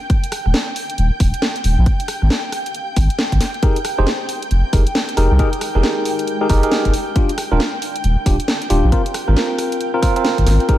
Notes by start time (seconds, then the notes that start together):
Already playing: D4 A#4 G5
0.10 kick, closed hi-hat
0.24 closed hi-hat
0.32 cross-stick, open hi-hat
0.46 D#1, cross-stick
0.54 snare
0.62 G4
0.76 F5, open hi-hat
0.90 closed hi-hat
0.98 D#1, closed hi-hat
1.20 D#1, kick, open hi-hat
1.34 closed hi-hat
1.42 snare
1.56 closed hi-hat
1.64 D#1, open hi-hat
1.78 A#1
1.86 C4, kick, closed hi-hat
2.00 closed hi-hat
2.08 cross-stick, open hi-hat
2.22 G#1, cross-stick
2.26 A#4, snare
2.52 cross-stick, open hi-hat
2.66 closed hi-hat
2.74 closed hi-hat
2.96 G#1, kick, open hi-hat
3.10 closed hi-hat
3.19 snare
3.32 G#1, kick, closed hi-hat
3.41 snare, open hi-hat
3.54 closed hi-hat
3.63 D#4 G4 G#4 A#4, kick, closed hi-hat
3.73 G#3, closed hi-hat
3.85 cross-stick, open hi-hat
3.98 F1 D#4 G4 G#4 C5, cross-stick
4.07 snare
4.29 open hi-hat
4.42 closed hi-hat
4.51 F1, closed hi-hat
4.73 F1 D#4 G4 G#4 A#4, kick, open hi-hat
4.87 closed hi-hat
4.95 snare
5.09 G5, closed hi-hat
5.17 F1 D#4 G4 G#4 A#4, open hi-hat
5.31 C2
5.39 D#4 G4 G#4 A#4, kick, closed hi-hat
5.53 closed hi-hat
5.61 cross-stick, open hi-hat
5.75 F1 D#4 G4 G#4 A#4, cross-stick
5.83 snare
6.05 open hi-hat
6.19 closed hi-hat
6.27 closed hi-hat
6.41 D#4 G4 G#4 A#4
6.49 F1 D#4 G4 G#4 A#4, kick, open hi-hat
6.63 D#4 G4 G#4 A#4, closed hi-hat
6.72 snare
6.85 F1, kick, closed hi-hat
6.94 D4, open hi-hat
7.16 D4 F4 G4, kick, closed hi-hat
7.29 closed hi-hat
7.38 cross-stick, open hi-hat
7.51 D#1 D4 F4 A#4, cross-stick
7.60 snare
7.82 G4 F5, open hi-hat
7.96 closed hi-hat
8.04 D#1, closed hi-hat
8.26 D#1 D4 F4 G4, kick, open hi-hat
8.40 closed hi-hat
8.48 snare
8.62 closed hi-hat
8.70 D#1 D4 F4 G4, open hi-hat
8.84 A#1
8.92 C4 F4 A#4, kick, closed hi-hat
9.06 closed hi-hat
9.14 cross-stick, open hi-hat
9.28 G#1 C4 F4 A#4, cross-stick
9.36 snare
9.42 A#4
9.58 cross-stick, open hi-hat
9.72 closed hi-hat
9.81 closed hi-hat
9.94 C4 F4 A#4
10.02 C4 F4 A#4, kick, open hi-hat
10.16 C4 F4 A#4, closed hi-hat
10.25 snare
10.38 G#1, kick, closed hi-hat
10.47 G#1, snare, open hi-hat
10.60 closed hi-hat
10.69 D#4 G4 G#4 A#4 A#5, kick, closed hi-hat